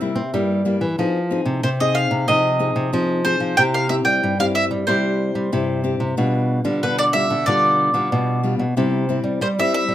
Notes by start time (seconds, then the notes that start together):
Already playing: C3 C4 E5
0.01 G3 A#3 E4
0.15 C4
0.33 G2 G3 A#3 E4
0.65 G3 A#3 E4
0.81 E3
0.98 F3 C4 D#4 G#4
1.30 C4 D#4 G#4
1.45 C3
1.63 C3 C5
1.80 C4 D#4 G#4 D#5
1.95 F5
2.11 C3
2.28 C3 F3 C4 D#4 G#4 D#5
2.59 C4 D#4 G#4
2.76 C3
2.93 C3 F3 C4 D#4 G#4
3.25 C4 D#4 G#4 C5
3.40 F3
3.57 C3 C4 E4 G4 G5
3.74 F5
3.89 C4 E4 G4 E5
4.05 G3 G5
4.23 G2 G3
4.39 C4 E4 G4 F5
4.55 E5
4.71 G3
4.87 C3 G3 C4 E4 G4 C5
5.35 G3
5.52 G2 C3 C4 E4 G4
5.84 C4 E4 G4
6.00 C3
6.17 B2 G3 D4 F4
6.64 D3 G3 D4 F4
6.83 B2 D3 B4
6.99 D5
7.13 G3 D4 F4 E5
7.30 D3
7.46 B2 D3 G3 D4 F4 D5
7.94 D3 G3 D4 F4
8.12 B2
8.43 G3 D4 F4
8.59 B2
8.77 C3 G3 C4 E4
9.09 G3 C4 E4
9.24 G3
9.41 G3 C5
9.59 G3 C4 E4 E5
9.74 E5
9.89 G3